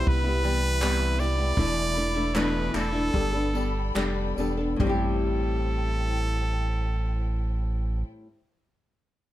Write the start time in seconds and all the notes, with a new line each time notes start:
Already playing: G3 B3 E4 G4 E5 B5
0.07 C2 B4, kick
0.24 G3 B3 E4
0.43 E3 G3 B3 E4, tambourine
0.81 C3 E3 G3 B3 E4, clap
1.18 E3 G3 B3 E4 D5, tambourine
1.38 G3 B3 E4
1.57 E1 E2 B2 E3 A3 D4 E4 A4 D5, kick
1.95 E3 A3 D4 E4, tambourine
2.14 E3 A3 D4 E4
2.34 E2 B2 E3 A3 D4 E4 B4, clap
2.73 E1 E3 A3 D4 E4 A4, clap, tambourine
2.93 E3 A3 D4 E4
3.13 G1 G3 B3 D4 A4 G5 B5, kick
3.33 B3 D4 A4
3.54 G3 B3 D4 A4, tambourine
3.95 F1 G3 B3 D4 A4, clap
4.36 E1 G3 B3 D4 A4, tambourine
4.57 B3 D4 A4
4.76 A1 A2 G3 E4 A4 C5 G5, kick, floor tom
4.81 C4 A4
4.87 E4 G4